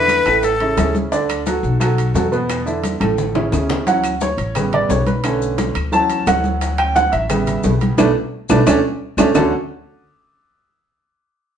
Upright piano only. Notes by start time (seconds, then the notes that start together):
Already playing: D3 D4 E4
0.26 A2 A3 A4
0.60 C#3 C#4 E4
0.78 C#3 C#4 E4
1.12 D3 D4 D5
1.46 F#3 F#4 A4
1.80 F#3 F#4 A4
2.15 F#3 F#4 A4
2.32 B2 B3 B4
2.66 D3 D4 E4
3.00 A2 A3 A4
3.35 C#3 C#4 E4
3.52 C#3 C#4 E4
3.86 E3 F#3 C#4 F#5
4.22 C#5
4.56 C#3 G3 B3
4.74 D5
4.90 C#5
5.07 B4
5.24 D3 A3 C#4
5.92 E3 F#3 C#4 A5
6.27 F#5
6.78 G5
6.95 F#5
7.12 E5
7.29 C#3 G3 B3
7.98 A3 B3 D4
8.50 A3 B3 D4
8.67 A3 C#4 D4
9.18 A3 C#4 D4
9.35 D3 A3 C#4 D4 F#4 A4